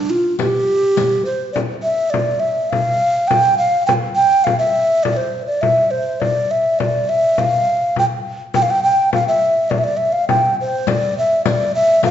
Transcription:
Already playing: ocarina D4
0.10 ocarina F4
0.39 ocarina G4, riq, frame drum
0.68 riq
0.97 riq, frame drum
1.25 ocarina C5, frame drum
1.53 ocarina D5, frame drum
1.83 ocarina E5, frame drum
2.10 ocarina D5, frame drum
2.40 ocarina E5
2.70 ocarina F5, frame drum
3.01 frame drum
3.28 ocarina G5, frame drum
3.58 ocarina F5
3.86 ocarina G5, frame drum
4.15 ocarina G5
4.44 ocarina F5, frame drum
4.58 ocarina E5
5.03 ocarina D5, frame drum
5.17 ocarina C5
5.46 ocarina D5
5.61 ocarina E5, frame drum
5.91 ocarina C5
6.20 ocarina D5, frame drum
6.51 ocarina E5, frame drum
6.79 ocarina D5, frame drum
7.09 ocarina E5
7.38 ocarina F5, frame drum
7.68 frame drum
7.96 ocarina G5, frame drum
8.54 ocarina G5, frame drum
8.62 ocarina F5
8.70 ocarina G5
8.83 ocarina G5, frame drum
9.13 ocarina F5, frame drum
9.28 ocarina E5
9.70 ocarina D5, frame drum
9.78 ocarina E5
9.84 ocarina D5
9.97 ocarina E5
10.01 frame drum
10.12 ocarina F5
10.28 ocarina G5, frame drum
10.61 ocarina C5
10.87 ocarina D5, riq, frame drum
11.17 ocarina E5, frame drum
11.45 ocarina D5, riq, frame drum
11.75 ocarina E5
12.03 ocarina F5, riq, frame drum

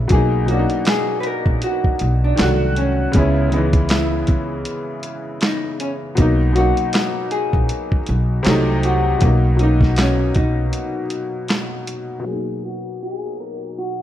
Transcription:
0.08 upright bass B1, upright piano B2 F#3, kick, closed hi-hat
0.12 upright piano A#3 D#4, hollow-body jazz guitar G#4
0.46 upright piano B2 F#3, closed hi-hat
0.50 upright piano A#3 D4, hollow-body jazz guitar F#4
0.59 upright piano D#4
0.70 closed hi-hat
0.85 hollow-body jazz guitar G#4, snare, clap, closed hi-hat
1.20 hollow-body jazz guitar B4, closed hi-hat
1.27 hollow-body jazz guitar A#4
1.46 upright bass A#1, kick
1.62 hollow-body jazz guitar F#4, closed hi-hat
1.84 muted upright bass stroke, kick
1.99 upright bass B1, closed hi-hat
2.24 hollow-body jazz guitar D4
2.36 upright bass C2, upright piano D#3 F#3, snare, clap, closed hi-hat
2.40 upright piano A3 F#4
2.76 hollow-body jazz guitar C#4, closed hi-hat
3.12 upright bass C#2, upright piano C#3 G#3, kick, closed hi-hat
3.16 upright piano B3 E4, hollow-body jazz guitar C#4
3.49 upright piano C#3 G#3, closed hi-hat
3.53 upright piano E3 B3, hollow-body jazz guitar D#4
3.73 kick, closed hi-hat
3.89 hollow-body jazz guitar E4, snare, clap, closed hi-hat
4.27 upright bass C#2, kick, closed hi-hat
4.65 closed hi-hat
5.03 closed hi-hat
5.41 hollow-body jazz guitar D#4, snare, clap, closed hi-hat
5.80 hollow-body jazz guitar C#4, closed hi-hat
6.15 upright bass B1, upright piano B2 F#3, hollow-body jazz guitar D#4, kick, closed hi-hat
6.20 upright piano A#3 D#4
6.53 upright piano B2 F#3, hollow-body jazz guitar F#4, closed hi-hat
6.57 upright piano A#3 D#4
6.77 closed hi-hat
6.93 snare, clap, closed hi-hat
7.31 hollow-body jazz guitar G#4, closed hi-hat
7.53 upright bass A#1, kick
7.69 closed hi-hat
7.92 muted upright bass stroke, kick
8.07 upright bass B1, closed hi-hat
8.43 upright bass C2, upright piano C3 F#3, snare, clap, closed hi-hat
8.47 upright piano A3 D#4
8.83 hollow-body jazz guitar F#4, closed hi-hat
9.19 upright bass B1, upright piano B2 F#3, kick, closed hi-hat
9.23 upright piano A#3 D#4
9.57 upright piano B2 F#3, hollow-body jazz guitar D#4, closed hi-hat
9.61 upright piano A#3 D#4
9.81 kick, snare
9.96 hollow-body jazz guitar C#4, snare, clap, closed hi-hat
10.35 upright bass B1, hollow-body jazz guitar D#4, kick, closed hi-hat
10.73 closed hi-hat
11.10 closed hi-hat
11.48 snare, clap, closed hi-hat
11.87 closed hi-hat
12.20 upright piano B2
12.24 upright piano F#3, hollow-body jazz guitar G#4
12.28 upright piano A#3
12.33 upright piano D#4
12.65 hollow-body jazz guitar F#4
13.03 hollow-body jazz guitar G#4
13.40 hollow-body jazz guitar A#4
13.78 hollow-body jazz guitar F#4

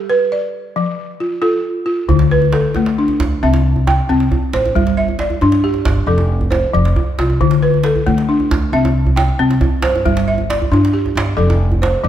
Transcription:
Already playing: balafon G4 A4
0.10 balafon B4
0.32 balafon D5
0.76 balafon F3
1.20 balafon F4
1.42 balafon F4 A4
1.86 balafon F4
2.09 upright bass D2, balafon D3, djembe bass
2.19 djembe slap
2.31 balafon B4, djembe slap
2.42 djembe tone
2.52 balafon A4, djembe slap
2.74 upright bass D3, balafon A3, djembe tone
2.86 djembe slap
2.98 balafon D4
3.08 djembe tone
3.20 upright bass D2, djembe slap, djembe bass
3.32 djembe slap
3.43 upright bass C2, balafon C4 E5
3.54 djembe slap, djembe tone
3.76 djembe slap, djembe bass
3.87 balafon G5, djembe slap, djembe tone
4.09 upright bass C2, balafon C4, djembe slap
4.20 djembe slap
4.32 djembe tone, djembe bass
4.53 upright bass A1, balafon C5, djembe slap
4.65 djembe slap, djembe tone
4.75 upright bass G1, balafon G3, djembe bass
4.87 djembe slap
4.97 balafon E5, djembe slap
5.08 djembe tone
5.19 balafon D5, djembe slap
5.30 djembe bass
5.41 upright bass G2, balafon D4, djembe tone
5.52 djembe slap
5.64 balafon G4
5.74 djembe tone
5.85 upright bass G1, djembe slap, djembe bass
5.95 djembe slap
6.07 upright bass F1, balafon F3 A4
6.18 djembe slap, djembe tone
6.41 djembe slap, djembe bass
6.51 balafon C5, djembe slap, djembe tone
6.74 upright bass F1, balafon F3, djembe slap
6.85 djembe slap
6.96 djembe tone, djembe bass
7.19 upright bass C2, balafon F4, djembe slap
7.30 djembe slap, djembe tone
7.41 upright bass D2, balafon D3, djembe bass
7.51 djembe slap
7.62 balafon B4, djembe slap
7.74 djembe tone
7.84 balafon A4, djembe slap
7.96 djembe bass
8.06 upright bass D3, balafon A3, djembe tone
8.18 djembe slap
8.29 balafon D4
8.40 djembe tone
8.51 upright bass D2, djembe slap, djembe bass
8.63 djembe slap
8.73 upright bass C2, balafon C4 E5
8.85 djembe slap, djembe tone
9.06 djembe slap, djembe bass
9.16 balafon G5, djembe slap, djembe tone
9.39 upright bass C2, balafon C4, djembe slap
9.50 djembe slap
9.61 djembe tone, djembe bass
9.82 upright bass G2, balafon C5, djembe slap
9.95 djembe slap, djembe tone
10.05 upright bass G1, balafon G3, djembe bass
10.17 djembe slap
10.28 balafon E5
10.38 djembe slap, djembe tone
10.50 balafon D5, djembe slap
10.62 djembe bass
10.71 upright bass G2, balafon D4, djembe tone
10.85 djembe slap
10.93 balafon G4
11.06 djembe tone
11.15 upright bass G1, djembe slap
11.37 upright bass F1, balafon F3 A4
11.50 djembe slap, djembe tone
11.72 djembe bass
11.82 balafon C5, djembe slap, djembe tone
12.04 upright bass F1, balafon F3

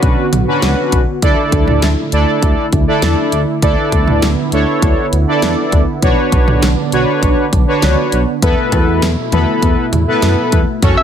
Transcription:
Already playing: analog synth pad D3 B3 F#4, analog polysynth C#4 D4 F#4 B4
0.03 analog synth bass B1, kick, closed hi-hat
0.33 analog synth bass B1, closed hi-hat, mid tom
0.47 analog polysynth C#4 D4 F#4 B4
0.62 analog synth bass C#2, snare, closed hi-hat
0.92 analog synth bass B1, kick, closed hi-hat
1.22 analog synth bass D2, analog synth pad D3 A3 E4, analog polysynth D4 E4 A4 D5, kick, closed hi-hat
1.52 analog synth bass D2, kick, closed hi-hat
1.67 analog synth bass D2, mid tom
1.82 analog synth bass D2, snare, closed hi-hat
2.12 analog synth bass D2, analog polysynth D4 E4 A4 D5, closed hi-hat
2.42 analog synth bass D2, kick, closed hi-hat
2.73 analog synth bass D2, kick, closed hi-hat
2.87 analog polysynth D4 E4 A4 D5
3.02 analog synth bass E2, snare, closed hi-hat
3.32 analog synth bass D2, closed hi-hat
3.62 analog synth bass D2, analog synth pad B3, analog polysynth D4 E4 A4 D5, kick, closed hi-hat
3.92 analog synth bass D2, kick, closed hi-hat
4.07 analog synth bass D2, mid tom
4.22 analog synth bass D2, snare, closed hi-hat
4.52 analog synth bass D2, analog polysynth D4 E4 A4 C#5, closed hi-hat
4.82 analog synth bass D2, kick, closed hi-hat
5.13 analog synth bass D2, closed hi-hat
5.27 analog polysynth D4 E4 A4 D5
5.42 analog synth bass E2, snare, closed hi-hat
5.72 analog synth bass D2, kick, closed hi-hat
6.02 analog synth bass B1, analog synth pad D3 D4, analog polysynth D4 F#4 B4 C#5, kick, closed hi-hat
6.32 analog synth bass B1, kick, closed hi-hat
6.48 analog synth bass B1, mid tom
6.62 analog synth bass B1, snare, closed hi-hat
6.92 analog synth bass B1, analog polysynth D4 F#4 B4 C#5, closed hi-hat
7.22 analog synth bass B1, kick, closed hi-hat
7.53 analog synth bass B1, kick, closed hi-hat
7.67 analog polysynth D4 F#4 B4 C#5
7.82 analog synth bass C#2, snare, closed hi-hat
8.12 analog synth bass B1, closed hi-hat
8.42 analog synth bass E2, analog synth pad B2 A3 E4, analog polysynth B3 E4 A4 B4, kick, closed hi-hat
8.72 analog synth bass E2, kick, closed hi-hat, cowbell
8.88 analog synth bass E2
9.02 analog synth bass E2, snare, closed hi-hat
9.32 analog synth bass E2, analog polysynth B3 E4 A4 B4, closed hi-hat, mid tom
9.62 analog synth bass E2, kick, closed hi-hat
9.93 analog synth bass E2, closed hi-hat, mid tom
10.07 analog polysynth B3 E4 A4 B4
10.22 analog synth bass F#2, snare, closed hi-hat
10.52 analog synth bass E2, kick, closed hi-hat
10.82 analog synth bass F#2, analog synth pad C#3 A3 F#4, analog polysynth C#4 F#4 A4 C#5, kick, closed hi-hat, impact
10.97 synth pluck E5

